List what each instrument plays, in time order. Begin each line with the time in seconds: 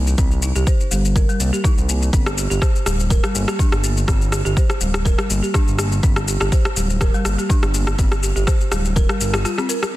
Already playing: analog synth bass C2
0.07 shaker
0.18 analog synth bass C2, marimba C4, kick, shaker
0.31 shaker
0.42 marimba D#4, shaker
0.56 analog synth bass C2, marimba G4, shaker
0.67 marimba C5, kick, shaker
0.80 shaker
0.91 analog synth bass G1, marimba G3, shaker
1.05 shaker
1.16 marimba A#4, kick, shaker
1.29 marimba G3, shaker
1.40 analog synth bass C2, marimba A#3, shaker
1.53 marimba G4, shaker
1.64 marimba D#4, kick, shaker
1.78 analog synth bass C2, shaker
1.89 marimba A#3, shaker
2.02 shaker
2.13 analog synth bass G1, marimba C4, kick, shaker
2.26 cross-stick, shaker
2.38 marimba G4, shaker
2.50 analog synth bass G1, marimba G4, shaker
2.62 marimba C5, kick, cross-stick, shaker
2.76 shaker
2.86 analog synth bass D1, marimba G3, cross-stick, shaker
3.00 shaker
3.10 marimba A#4, kick, shaker
3.23 marimba G3, cross-stick, shaker
3.35 analog synth bass G1, marimba A#3, shaker
3.48 marimba G4, cross-stick, shaker
3.59 marimba D4, kick, shaker
3.72 analog synth bass G1, cross-stick, shaker
3.83 marimba A#3, shaker
3.97 shaker
4.08 analog synth bass G1, marimba C4, kick, cross-stick, shaker
4.21 shaker
4.32 marimba G4, cross-stick, shaker
4.45 analog synth bass G1, marimba G4, shaker
4.57 marimba C5, kick, shaker
4.70 cross-stick, shaker
4.81 analog synth bass D1, marimba G3, shaker
4.94 cross-stick, shaker
5.05 marimba A#4, kick, shaker
5.18 marimba G3, cross-stick, shaker
5.30 analog synth bass G1, marimba A#3, shaker
5.43 marimba G4, shaker
5.54 marimba D4, kick, cross-stick, shaker
5.68 analog synth bass G1, shaker
5.79 marimba A#3, cross-stick, shaker
5.92 shaker
6.03 analog synth bass G1, marimba C4, kick, shaker
6.16 cross-stick, shaker
6.28 marimba G4, shaker
6.41 analog synth bass G1, marimba G4, cross-stick, shaker
6.52 marimba C5, kick, shaker
6.65 cross-stick, shaker
6.76 analog synth bass D1, marimba G3, shaker
6.90 shaker
7.01 marimba A#4, kick, cross-stick, shaker
7.14 marimba G3, shaker
7.25 analog synth bass G1, marimba A#3, cross-stick, shaker
7.39 marimba G4, shaker
7.50 marimba D4, kick, shaker
7.63 analog synth bass G1, cross-stick, shaker
7.74 marimba A#3, shaker
7.87 cross-stick, shaker
7.98 analog synth bass G1, marimba C4, kick, shaker
8.12 cross-stick, shaker
8.23 marimba G4, shaker
8.36 analog synth bass G1, marimba G4, shaker
8.47 marimba C5, kick, cross-stick, shaker
8.61 shaker
8.71 analog synth bass D1, marimba G3, cross-stick, shaker
8.85 shaker
8.96 marimba A#4, kick, shaker
9.09 marimba G3, cross-stick, shaker
9.20 analog synth bass G1, marimba A#4, shaker
9.33 marimba F4, cross-stick, shaker
9.45 marimba F4, cross-stick, shaker
9.58 marimba C4, cross-stick, shaker
9.69 marimba A#4, shaker
9.83 cross-stick, shaker